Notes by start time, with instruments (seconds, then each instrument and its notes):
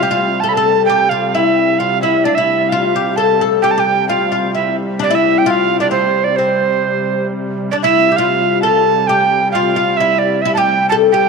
Already playing: pipe organ C3 G3, recorder F5
0.03 oud G4
0.11 oud F4
0.40 oud A4, recorder A5
0.49 recorder B5
0.54 oud A4, recorder A5
0.85 recorder G5
0.89 oud G4
1.09 oud F4, recorder F5
1.29 recorder F5
1.34 oud E4, recorder E5
1.79 oud F4, recorder F5
2.02 oud E4, recorder E5
2.24 pipe organ C3 G3, oud D4, recorder D5
2.35 oud E4, recorder E5
2.69 oud F4, recorder F5
2.96 oud G4
3.16 oud A4, recorder A5
3.41 oud A4
3.62 oud G4, recorder G5
3.71 recorder A5
3.76 oud G4, recorder G5 A5
4.09 oud F4, recorder F5
4.32 oud F4
4.54 oud E4, recorder E5
4.99 oud D4, recorder D5
5.11 oud E4
5.15 recorder E5
5.38 recorder G5
5.46 oud F4, recorder G5
5.50 recorder F5
5.80 oud D4, recorder D5
5.91 oud C4, recorder C5
6.24 recorder D5
6.36 oud C4, recorder C5
7.71 pipe organ C3 G3, oud D4, recorder D5
7.83 oud E4, recorder E5
8.12 oud G4
8.16 oud F4, recorder F5
8.62 oud A4, recorder A5
9.07 oud G4, recorder G5
9.52 oud F4, recorder F5
9.76 oud F4
9.97 oud E4, recorder E5
10.19 recorder D5
10.42 oud E4, recorder E5
10.54 oud G4, recorder G5 A5
10.89 oud A4, recorder A5
11.12 oud G4, recorder G5